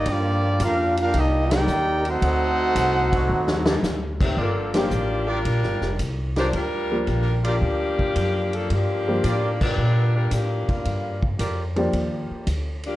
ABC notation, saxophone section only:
X:1
M:4/4
L:1/8
Q:"Swing" 1/4=111
K:Gm
V:1 name="Saxophone section"
z8 | z6 z [E,A,CG] | [F,B,DA] [F,B,DG]2 [G,DFB]3 z [A,DFc] | [G,DFB]3 [F,B,DG]4 [F,B,DA] |
[F,B,DG]3 [G,DFB]2 [G,DFB] [F,B,DG] [G,B,DF]- | [G,B,DF] z6 [F,B,DG] |]